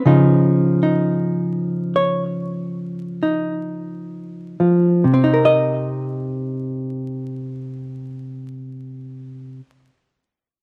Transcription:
0, 0, Header, 1, 2, 480
1, 0, Start_track
1, 0, Key_signature, -3, "minor"
1, 0, Tempo, 1107011
1, 21, Time_signature, 4, 2, 24, 8
1, 502, Tempo, 1185771
1, 982, Tempo, 1287554
1, 1462, Tempo, 1408451
1, 3847, End_track
2, 0, Start_track
2, 0, Title_t, "Hollow-body jazz guitar"
2, 0, Program_c, 0, 26
2, 0, Note_on_c, 0, 71, 86
2, 24, Note_on_c, 0, 49, 71
2, 28, Note_on_c, 0, 53, 44
2, 30, Note_on_c, 0, 63, 48
2, 352, Note_off_c, 0, 63, 0
2, 359, Note_on_c, 0, 63, 44
2, 826, Note_on_c, 0, 73, 66
2, 1306, Note_off_c, 0, 71, 0
2, 1307, Note_off_c, 0, 63, 0
2, 1311, Note_on_c, 0, 63, 41
2, 1787, Note_off_c, 0, 49, 0
2, 1788, Note_off_c, 0, 53, 0
2, 1792, Note_on_c, 0, 53, 48
2, 1923, Note_off_c, 0, 63, 0
2, 1939, Note_off_c, 0, 73, 0
2, 1942, Note_off_c, 0, 53, 0
2, 1943, Note_on_c, 0, 48, 54
2, 1975, Note_on_c, 0, 60, 55
2, 2010, Note_on_c, 0, 63, 49
2, 2043, Note_on_c, 0, 70, 50
2, 2082, Note_on_c, 0, 75, 75
2, 3496, Note_off_c, 0, 48, 0
2, 3528, Note_off_c, 0, 60, 0
2, 3562, Note_off_c, 0, 63, 0
2, 3596, Note_off_c, 0, 70, 0
2, 3621, Note_off_c, 0, 75, 0
2, 3847, End_track
0, 0, End_of_file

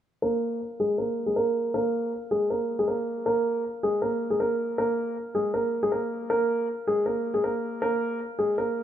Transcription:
0, 0, Header, 1, 2, 480
1, 0, Start_track
1, 0, Tempo, 379747
1, 282, Time_signature, 4, 2, 24, 8
1, 11166, End_track
2, 0, Start_track
2, 0, Title_t, "Grand piano"
2, 0, Program_c, 0, 0
2, 281, Note_on_c, 0, 70, 97
2, 291, Note_on_c, 0, 58, 77
2, 733, Note_off_c, 0, 70, 0
2, 738, Note_off_c, 0, 58, 0
2, 1009, Note_on_c, 0, 68, 76
2, 1019, Note_on_c, 0, 56, 68
2, 1199, Note_off_c, 0, 68, 0
2, 1205, Note_off_c, 0, 56, 0
2, 1241, Note_on_c, 0, 70, 76
2, 1251, Note_on_c, 0, 58, 65
2, 1580, Note_off_c, 0, 70, 0
2, 1585, Note_off_c, 0, 58, 0
2, 1597, Note_on_c, 0, 68, 68
2, 1607, Note_on_c, 0, 56, 53
2, 1695, Note_off_c, 0, 68, 0
2, 1701, Note_off_c, 0, 56, 0
2, 1721, Note_on_c, 0, 70, 89
2, 1732, Note_on_c, 0, 58, 61
2, 2173, Note_off_c, 0, 70, 0
2, 2178, Note_off_c, 0, 58, 0
2, 2201, Note_on_c, 0, 70, 98
2, 2211, Note_on_c, 0, 58, 77
2, 2653, Note_off_c, 0, 70, 0
2, 2658, Note_off_c, 0, 58, 0
2, 2920, Note_on_c, 0, 68, 80
2, 2930, Note_on_c, 0, 56, 60
2, 3114, Note_off_c, 0, 68, 0
2, 3120, Note_off_c, 0, 56, 0
2, 3164, Note_on_c, 0, 70, 78
2, 3175, Note_on_c, 0, 58, 60
2, 3502, Note_off_c, 0, 70, 0
2, 3507, Note_off_c, 0, 58, 0
2, 3526, Note_on_c, 0, 68, 78
2, 3536, Note_on_c, 0, 56, 62
2, 3620, Note_off_c, 0, 68, 0
2, 3627, Note_off_c, 0, 56, 0
2, 3636, Note_on_c, 0, 70, 88
2, 3646, Note_on_c, 0, 58, 73
2, 4090, Note_off_c, 0, 70, 0
2, 4095, Note_off_c, 0, 58, 0
2, 4120, Note_on_c, 0, 70, 95
2, 4130, Note_on_c, 0, 58, 79
2, 4572, Note_off_c, 0, 70, 0
2, 4577, Note_off_c, 0, 58, 0
2, 4844, Note_on_c, 0, 68, 84
2, 4854, Note_on_c, 0, 56, 60
2, 5036, Note_off_c, 0, 68, 0
2, 5042, Note_off_c, 0, 56, 0
2, 5080, Note_on_c, 0, 70, 83
2, 5090, Note_on_c, 0, 58, 62
2, 5419, Note_off_c, 0, 70, 0
2, 5425, Note_off_c, 0, 58, 0
2, 5439, Note_on_c, 0, 68, 67
2, 5449, Note_on_c, 0, 56, 51
2, 5536, Note_off_c, 0, 68, 0
2, 5542, Note_off_c, 0, 56, 0
2, 5561, Note_on_c, 0, 70, 88
2, 5571, Note_on_c, 0, 58, 63
2, 6013, Note_off_c, 0, 70, 0
2, 6018, Note_off_c, 0, 58, 0
2, 6044, Note_on_c, 0, 70, 95
2, 6055, Note_on_c, 0, 58, 76
2, 6494, Note_off_c, 0, 70, 0
2, 6500, Note_off_c, 0, 58, 0
2, 6759, Note_on_c, 0, 68, 73
2, 6769, Note_on_c, 0, 56, 60
2, 6953, Note_off_c, 0, 68, 0
2, 6959, Note_off_c, 0, 56, 0
2, 7000, Note_on_c, 0, 70, 78
2, 7010, Note_on_c, 0, 58, 55
2, 7339, Note_off_c, 0, 70, 0
2, 7345, Note_off_c, 0, 58, 0
2, 7367, Note_on_c, 0, 68, 79
2, 7377, Note_on_c, 0, 56, 64
2, 7461, Note_off_c, 0, 68, 0
2, 7467, Note_off_c, 0, 56, 0
2, 7480, Note_on_c, 0, 70, 88
2, 7491, Note_on_c, 0, 58, 71
2, 7932, Note_off_c, 0, 70, 0
2, 7938, Note_off_c, 0, 58, 0
2, 7961, Note_on_c, 0, 70, 96
2, 7971, Note_on_c, 0, 58, 80
2, 8413, Note_off_c, 0, 70, 0
2, 8418, Note_off_c, 0, 58, 0
2, 8689, Note_on_c, 0, 68, 80
2, 8699, Note_on_c, 0, 56, 68
2, 8879, Note_off_c, 0, 68, 0
2, 8885, Note_off_c, 0, 56, 0
2, 8921, Note_on_c, 0, 70, 76
2, 8931, Note_on_c, 0, 58, 63
2, 9260, Note_off_c, 0, 70, 0
2, 9265, Note_off_c, 0, 58, 0
2, 9277, Note_on_c, 0, 68, 67
2, 9287, Note_on_c, 0, 56, 50
2, 9375, Note_off_c, 0, 68, 0
2, 9381, Note_off_c, 0, 56, 0
2, 9402, Note_on_c, 0, 70, 88
2, 9413, Note_on_c, 0, 58, 64
2, 9853, Note_off_c, 0, 70, 0
2, 9859, Note_off_c, 0, 58, 0
2, 9882, Note_on_c, 0, 70, 101
2, 9892, Note_on_c, 0, 58, 77
2, 10333, Note_off_c, 0, 70, 0
2, 10339, Note_off_c, 0, 58, 0
2, 10600, Note_on_c, 0, 68, 79
2, 10610, Note_on_c, 0, 56, 60
2, 10793, Note_off_c, 0, 68, 0
2, 10799, Note_off_c, 0, 56, 0
2, 10845, Note_on_c, 0, 70, 83
2, 10855, Note_on_c, 0, 58, 59
2, 11166, Note_off_c, 0, 58, 0
2, 11166, Note_off_c, 0, 70, 0
2, 11166, End_track
0, 0, End_of_file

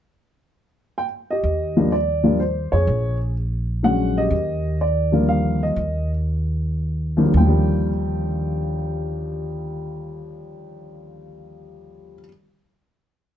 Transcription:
0, 0, Header, 1, 3, 480
1, 0, Start_track
1, 0, Key_signature, -3, "major"
1, 0, Tempo, 478088
1, 11, Time_signature, 3, 2, 24, 8
1, 4811, Tempo, 497100
1, 6251, Tempo, 538117
1, 7211, Tempo, 560224
1, 12360, End_track
2, 0, Start_track
2, 0, Title_t, "Upright piano"
2, 0, Program_c, 0, 0
2, 981, Note_on_c, 0, 79, 81
2, 1053, Note_off_c, 0, 79, 0
2, 1310, Note_on_c, 0, 75, 80
2, 1330, Note_on_c, 0, 67, 57
2, 1773, Note_on_c, 0, 53, 56
2, 1776, Note_on_c, 0, 55, 53
2, 1783, Note_on_c, 0, 58, 50
2, 1791, Note_on_c, 0, 62, 66
2, 1907, Note_off_c, 0, 67, 0
2, 1914, Note_off_c, 0, 53, 0
2, 1915, Note_off_c, 0, 55, 0
2, 1919, Note_off_c, 0, 58, 0
2, 1923, Note_off_c, 0, 62, 0
2, 1930, Note_on_c, 0, 74, 70
2, 1957, Note_off_c, 0, 75, 0
2, 2244, Note_on_c, 0, 53, 50
2, 2252, Note_on_c, 0, 58, 48
2, 2253, Note_on_c, 0, 55, 50
2, 2263, Note_on_c, 0, 62, 57
2, 2389, Note_off_c, 0, 53, 0
2, 2393, Note_off_c, 0, 58, 0
2, 2394, Note_off_c, 0, 55, 0
2, 2399, Note_off_c, 0, 62, 0
2, 2407, Note_on_c, 0, 72, 66
2, 2425, Note_off_c, 0, 74, 0
2, 2731, Note_on_c, 0, 73, 75
2, 2744, Note_off_c, 0, 72, 0
2, 2753, Note_on_c, 0, 68, 46
2, 3179, Note_off_c, 0, 73, 0
2, 3339, Note_off_c, 0, 68, 0
2, 3845, Note_on_c, 0, 50, 54
2, 3851, Note_on_c, 0, 54, 45
2, 3856, Note_on_c, 0, 56, 45
2, 3858, Note_on_c, 0, 78, 88
2, 3859, Note_on_c, 0, 61, 57
2, 4189, Note_off_c, 0, 78, 0
2, 4193, Note_on_c, 0, 75, 83
2, 4207, Note_on_c, 0, 67, 58
2, 4327, Note_off_c, 0, 50, 0
2, 4331, Note_off_c, 0, 54, 0
2, 4333, Note_off_c, 0, 56, 0
2, 4334, Note_off_c, 0, 61, 0
2, 4788, Note_off_c, 0, 67, 0
2, 4830, Note_on_c, 0, 74, 69
2, 4838, Note_off_c, 0, 75, 0
2, 5129, Note_on_c, 0, 50, 54
2, 5137, Note_on_c, 0, 53, 47
2, 5142, Note_on_c, 0, 55, 51
2, 5142, Note_on_c, 0, 58, 61
2, 5258, Note_off_c, 0, 74, 0
2, 5288, Note_on_c, 0, 77, 76
2, 5617, Note_off_c, 0, 77, 0
2, 5620, Note_on_c, 0, 75, 71
2, 5729, Note_off_c, 0, 50, 0
2, 5733, Note_off_c, 0, 53, 0
2, 5735, Note_off_c, 0, 55, 0
2, 5736, Note_off_c, 0, 58, 0
2, 6066, Note_off_c, 0, 75, 0
2, 7041, Note_on_c, 0, 39, 59
2, 7047, Note_on_c, 0, 50, 53
2, 7049, Note_on_c, 0, 53, 53
2, 7051, Note_on_c, 0, 55, 52
2, 7055, Note_on_c, 0, 58, 60
2, 7086, Note_off_c, 0, 39, 0
2, 7099, Note_on_c, 0, 39, 58
2, 7161, Note_off_c, 0, 50, 0
2, 7174, Note_on_c, 0, 50, 54
2, 7221, Note_on_c, 0, 79, 70
2, 7236, Note_off_c, 0, 53, 0
2, 7249, Note_on_c, 0, 53, 57
2, 7305, Note_off_c, 0, 55, 0
2, 7318, Note_on_c, 0, 55, 66
2, 7663, Note_off_c, 0, 58, 0
2, 11312, Note_off_c, 0, 39, 0
2, 11347, Note_off_c, 0, 79, 0
2, 11358, Note_off_c, 0, 50, 0
2, 11395, Note_off_c, 0, 53, 0
2, 11429, Note_off_c, 0, 55, 0
2, 12360, End_track
3, 0, Start_track
3, 0, Title_t, "Upright bass"
3, 0, Program_c, 1, 32
3, 1441, Note_on_c, 1, 39, 74
3, 2691, Note_off_c, 1, 39, 0
3, 2737, Note_on_c, 1, 41, 57
3, 2878, Note_off_c, 1, 41, 0
3, 2884, Note_on_c, 1, 34, 77
3, 4287, Note_off_c, 1, 34, 0
3, 4321, Note_on_c, 1, 39, 75
3, 5717, Note_off_c, 1, 39, 0
3, 5749, Note_on_c, 1, 39, 74
3, 7171, Note_off_c, 1, 39, 0
3, 7192, Note_on_c, 1, 39, 78
3, 11332, Note_off_c, 1, 39, 0
3, 12360, End_track
0, 0, End_of_file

